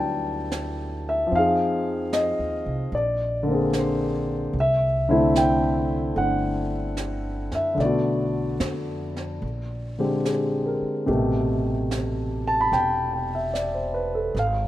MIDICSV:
0, 0, Header, 1, 5, 480
1, 0, Start_track
1, 0, Tempo, 809717
1, 777, Time_signature, 4, 2, 24, 8
1, 4617, Tempo, 819672
1, 8652, End_track
2, 0, Start_track
2, 0, Title_t, "Grand piano"
2, 0, Program_c, 0, 0
2, 0, Control_c, 0, 64, 127
2, 0, Note_on_c, 0, 54, 36
2, 0, Note_on_c, 0, 55, 52
2, 0, Note_on_c, 0, 59, 44
2, 0, Note_on_c, 0, 62, 38
2, 0, Note_on_c, 0, 64, 48
2, 0, Note_on_c, 0, 69, 56
2, 0, Note_on_c, 0, 71, 44
2, 0, Note_on_c, 0, 79, 72
2, 0, Note_on_c, 0, 81, 85
2, 607, Note_off_c, 0, 79, 0
2, 646, Note_on_c, 0, 76, 71
2, 751, Note_on_c, 0, 53, 51
2, 773, Note_off_c, 0, 55, 0
2, 774, Note_on_c, 0, 60, 47
2, 775, Note_off_c, 0, 62, 0
2, 778, Note_off_c, 0, 59, 0
2, 780, Note_off_c, 0, 54, 0
2, 783, Note_off_c, 0, 71, 0
2, 784, Note_off_c, 0, 64, 0
2, 784, Control_c, 0, 64, 0
2, 785, Note_off_c, 0, 81, 0
2, 788, Note_off_c, 0, 69, 0
2, 792, Note_off_c, 0, 76, 0
2, 797, Note_on_c, 0, 63, 42
2, 803, Note_on_c, 0, 77, 78
2, 817, Note_on_c, 0, 68, 54
2, 906, Control_c, 0, 64, 127
2, 1246, Note_off_c, 0, 77, 0
2, 1265, Note_on_c, 0, 75, 73
2, 1721, Note_off_c, 0, 53, 0
2, 1732, Note_off_c, 0, 60, 0
2, 1741, Control_c, 0, 64, 0
2, 1744, Note_off_c, 0, 63, 0
2, 1747, Note_on_c, 0, 74, 66
2, 1752, Note_off_c, 0, 75, 0
2, 1754, Note_off_c, 0, 68, 0
2, 1863, Control_c, 0, 64, 127
2, 2033, Note_on_c, 0, 50, 56
2, 2056, Note_on_c, 0, 58, 44
2, 2078, Note_on_c, 0, 60, 43
2, 2097, Note_on_c, 0, 68, 51
2, 2194, Note_off_c, 0, 74, 0
2, 2242, Note_on_c, 0, 72, 66
2, 2607, Note_off_c, 0, 72, 0
2, 2679, Note_off_c, 0, 50, 0
2, 2690, Note_off_c, 0, 58, 0
2, 2699, Control_c, 0, 64, 0
2, 2701, Note_off_c, 0, 60, 0
2, 2711, Note_off_c, 0, 68, 0
2, 2728, Note_on_c, 0, 76, 83
2, 2790, Control_c, 0, 64, 127
2, 3015, Note_on_c, 0, 50, 57
2, 3017, Note_on_c, 0, 57, 53
2, 3024, Note_on_c, 0, 60, 57
2, 3027, Note_on_c, 0, 64, 64
2, 3184, Note_on_c, 0, 79, 73
2, 3204, Note_off_c, 0, 76, 0
2, 3635, Note_off_c, 0, 79, 0
2, 3639, Note_off_c, 0, 57, 0
2, 3648, Note_on_c, 0, 57, 38
2, 3661, Note_on_c, 0, 78, 73
2, 3667, Note_on_c, 0, 62, 42
2, 4443, Note_off_c, 0, 78, 0
2, 4475, Note_on_c, 0, 76, 65
2, 4583, Note_off_c, 0, 50, 0
2, 4591, Note_on_c, 0, 50, 49
2, 4601, Note_off_c, 0, 57, 0
2, 4610, Note_on_c, 0, 57, 42
2, 4612, Note_off_c, 0, 76, 0
2, 4618, Note_off_c, 0, 60, 0
2, 4619, Note_off_c, 0, 64, 0
2, 4624, Note_off_c, 0, 62, 0
2, 4624, Control_c, 0, 64, 0
2, 4625, Note_on_c, 0, 74, 61
2, 4633, Note_on_c, 0, 59, 45
2, 4654, Note_on_c, 0, 66, 52
2, 4717, Control_c, 0, 64, 127
2, 5564, Note_off_c, 0, 50, 0
2, 5573, Note_off_c, 0, 57, 0
2, 5584, Note_off_c, 0, 59, 0
2, 5584, Control_c, 0, 64, 0
2, 5595, Note_off_c, 0, 66, 0
2, 5675, Control_c, 0, 64, 127
2, 5903, Note_on_c, 0, 50, 43
2, 5908, Note_on_c, 0, 60, 38
2, 5909, Note_on_c, 0, 56, 38
2, 5911, Note_on_c, 0, 67, 47
2, 6040, Note_off_c, 0, 74, 0
2, 6059, Note_on_c, 0, 68, 35
2, 6299, Note_on_c, 0, 70, 40
2, 6444, Note_off_c, 0, 68, 0
2, 6533, Note_off_c, 0, 67, 0
2, 6534, Note_on_c, 0, 48, 49
2, 6535, Note_on_c, 0, 57, 47
2, 6539, Note_on_c, 0, 47, 47
2, 6542, Note_on_c, 0, 67, 51
2, 6543, Note_off_c, 0, 50, 0
2, 6545, Note_off_c, 0, 60, 0
2, 6546, Note_off_c, 0, 56, 0
2, 6553, Control_c, 0, 64, 0
2, 6641, Note_off_c, 0, 70, 0
2, 6670, Control_c, 0, 64, 127
2, 7361, Note_on_c, 0, 81, 80
2, 7428, Note_off_c, 0, 81, 0
2, 7438, Note_on_c, 0, 83, 76
2, 7505, Note_off_c, 0, 83, 0
2, 7509, Note_on_c, 0, 79, 73
2, 7738, Note_off_c, 0, 79, 0
2, 7747, Note_on_c, 0, 79, 42
2, 7873, Note_on_c, 0, 76, 46
2, 7891, Note_off_c, 0, 79, 0
2, 7983, Note_on_c, 0, 74, 40
2, 8034, Note_off_c, 0, 76, 0
2, 8104, Note_on_c, 0, 72, 41
2, 8209, Note_off_c, 0, 74, 0
2, 8220, Note_on_c, 0, 71, 48
2, 8308, Note_off_c, 0, 72, 0
2, 8342, Note_on_c, 0, 69, 45
2, 8365, Note_off_c, 0, 71, 0
2, 8451, Note_off_c, 0, 48, 0
2, 8452, Note_off_c, 0, 57, 0
2, 8454, Note_off_c, 0, 47, 0
2, 8455, Note_off_c, 0, 67, 0
2, 8464, Control_c, 0, 64, 0
2, 8482, Note_on_c, 0, 77, 62
2, 8506, Note_off_c, 0, 69, 0
2, 8555, Control_c, 0, 64, 127
2, 8652, Note_off_c, 0, 77, 0
2, 8652, End_track
3, 0, Start_track
3, 0, Title_t, "Upright bass"
3, 0, Program_c, 1, 32
3, 0, Note_on_c, 1, 38, 73
3, 756, Note_off_c, 1, 38, 0
3, 780, Note_on_c, 1, 41, 67
3, 1394, Note_off_c, 1, 41, 0
3, 1418, Note_on_c, 1, 39, 49
3, 1565, Note_off_c, 1, 39, 0
3, 1577, Note_on_c, 1, 36, 65
3, 1724, Note_off_c, 1, 36, 0
3, 1731, Note_on_c, 1, 34, 77
3, 2667, Note_off_c, 1, 34, 0
3, 2688, Note_on_c, 1, 36, 76
3, 3627, Note_off_c, 1, 36, 0
3, 3651, Note_on_c, 1, 31, 81
3, 4438, Note_off_c, 1, 31, 0
3, 4457, Note_on_c, 1, 42, 58
3, 4602, Note_off_c, 1, 42, 0
3, 4608, Note_on_c, 1, 35, 72
3, 5068, Note_off_c, 1, 35, 0
3, 5091, Note_on_c, 1, 41, 67
3, 5551, Note_off_c, 1, 41, 0
3, 5572, Note_on_c, 1, 34, 79
3, 6365, Note_off_c, 1, 34, 0
3, 6543, Note_on_c, 1, 33, 78
3, 7481, Note_off_c, 1, 33, 0
3, 7504, Note_on_c, 1, 28, 74
3, 8433, Note_off_c, 1, 28, 0
3, 8457, Note_on_c, 1, 32, 77
3, 8652, Note_off_c, 1, 32, 0
3, 8652, End_track
4, 0, Start_track
4, 0, Title_t, "Muted upright bass strokes"
4, 6390, Note_on_c, 9, 29, 28
4, 6448, Note_off_c, 9, 29, 0
4, 8652, End_track
5, 0, Start_track
5, 0, Title_t, "Drums"
5, 305, Note_on_c, 9, 38, 36
5, 305, Note_on_c, 9, 44, 49
5, 365, Note_off_c, 9, 38, 0
5, 365, Note_off_c, 9, 44, 0
5, 781, Note_on_c, 9, 25, 27
5, 1261, Note_on_c, 9, 38, 39
5, 1261, Note_on_c, 9, 44, 46
5, 1320, Note_off_c, 9, 38, 0
5, 1320, Note_off_c, 9, 44, 0
5, 1739, Note_off_c, 9, 25, 0
5, 1739, Note_on_c, 9, 25, 34
5, 2213, Note_on_c, 9, 38, 39
5, 2213, Note_on_c, 9, 44, 44
5, 2272, Note_off_c, 9, 38, 0
5, 2272, Note_off_c, 9, 44, 0
5, 2691, Note_off_c, 9, 25, 0
5, 2691, Note_on_c, 9, 25, 34
5, 3175, Note_on_c, 9, 38, 41
5, 3175, Note_on_c, 9, 44, 52
5, 3234, Note_off_c, 9, 38, 0
5, 3234, Note_off_c, 9, 44, 0
5, 3654, Note_off_c, 9, 25, 0
5, 3654, Note_on_c, 9, 25, 35
5, 4131, Note_on_c, 9, 38, 42
5, 4131, Note_on_c, 9, 44, 42
5, 4190, Note_off_c, 9, 38, 0
5, 4190, Note_off_c, 9, 44, 0
5, 4455, Note_on_c, 9, 38, 27
5, 4514, Note_off_c, 9, 38, 0
5, 4624, Note_off_c, 9, 25, 0
5, 4624, Note_on_c, 9, 25, 37
5, 4624, Note_on_c, 9, 38, 25
5, 4682, Note_off_c, 9, 38, 0
5, 5093, Note_on_c, 9, 38, 44
5, 5093, Note_on_c, 9, 44, 45
5, 5151, Note_off_c, 9, 38, 0
5, 5151, Note_off_c, 9, 44, 0
5, 5423, Note_on_c, 9, 38, 24
5, 5482, Note_off_c, 9, 38, 0
5, 5578, Note_off_c, 9, 25, 0
5, 5578, Note_on_c, 9, 25, 35
5, 6060, Note_on_c, 9, 38, 35
5, 6060, Note_on_c, 9, 44, 40
5, 6119, Note_off_c, 9, 38, 0
5, 6119, Note_off_c, 9, 44, 0
5, 6543, Note_off_c, 9, 25, 0
5, 6543, Note_on_c, 9, 25, 33
5, 7031, Note_on_c, 9, 38, 36
5, 7031, Note_on_c, 9, 44, 52
5, 7090, Note_off_c, 9, 38, 0
5, 7090, Note_off_c, 9, 44, 0
5, 7510, Note_off_c, 9, 25, 0
5, 7510, Note_on_c, 9, 25, 33
5, 7510, Note_on_c, 9, 38, 27
5, 7569, Note_off_c, 9, 38, 0
5, 7991, Note_on_c, 9, 38, 37
5, 7991, Note_on_c, 9, 44, 45
5, 8050, Note_off_c, 9, 38, 0
5, 8050, Note_off_c, 9, 44, 0
5, 8468, Note_off_c, 9, 25, 0
5, 8468, Note_on_c, 9, 25, 31
5, 8468, Note_on_c, 9, 38, 26
5, 8527, Note_off_c, 9, 38, 0
5, 8652, Note_off_c, 9, 25, 0
5, 8652, End_track
0, 0, End_of_file